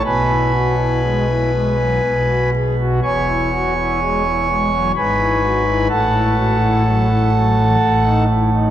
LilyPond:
<<
  \new Staff \with { instrumentName = "Pipe organ" } { \time 3/4 \key e \major \tempo 4 = 62 << { <b' gis'' b''>2~ <b' gis'' b''>8 r8 | <cis'' gis'' cis'''>2 <b' gis'' b''>4 | <a' fis'' a''>2~ <a' fis'' a''>8 r8 | } \\ { b,16 e'16 fis'16 e'16 gis16 e'16 gis16 fis16 b,16 fis'16 gis'16 fis'16 | e,16 e'16 fis'16 e'16 gis16 e'16 gis16 fis16 gis,16 e'16 fis'16 e'16 | a,16 e'16 fis'16 e'16 fis16 e'16 fis16 e16 a,16 dis'16 e'16 dis'16 | } >> }
  \new Staff \with { instrumentName = "Pipe organ" } { \clef bass \time 3/4 \key e \major b,,2 b,,4 | e,,2 gis,,4 | a,,2 a,,4 | }
>>